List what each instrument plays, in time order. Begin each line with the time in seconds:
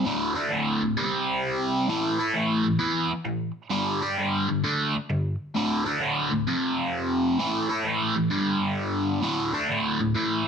0.05 overdriven electric guitar D2 A2 D3
0.35 overdriven electric guitar D3 A3 D4
0.51 overdriven electric guitar D2 A2 D3
0.82 overdriven electric guitar D2 A2
0.97 overdriven electric guitar C3 G3 C4
1.88 overdriven electric guitar A2 E3 A3
2.19 overdriven electric guitar A3 E4 A4
2.33 overdriven electric guitar A2 E3 A3
2.64 overdriven electric guitar A2 E3
2.79 overdriven electric guitar E3 B3 E4
3.11 muted overdriven electric guitar stroke
3.25 overdriven electric guitar A2 E3
3.71 overdriven electric guitar G2 D3 G3
4.02 overdriven electric guitar G3 D4 G4
4.18 overdriven electric guitar G2 D3 G3
4.49 overdriven electric guitar G2 D3
4.64 overdriven electric guitar D3 A3 D4
4.96 muted overdriven electric guitar stroke
5.10 overdriven electric guitar G2 D3
5.55 overdriven electric guitar D2 A2 D3
5.85 overdriven electric guitar D3 A3 D4
6.00 overdriven electric guitar D2 A2 D3
6.30 overdriven electric guitar D2 A2
6.47 overdriven electric guitar F2 C3 F3
7.39 overdriven electric guitar A2 E3 A3
7.69 overdriven electric guitar A3 E4 A4
7.84 overdriven electric guitar A2 E3 A3
8.16 overdriven electric guitar A2 E3
8.30 overdriven electric guitar G2 D3 G3
9.22 overdriven electric guitar D2 A2 D3
9.53 overdriven electric guitar D3 A3 D4
9.69 overdriven electric guitar D2 A2 D3
10.00 overdriven electric guitar D2 A2
10.14 overdriven electric guitar A2 E3 A3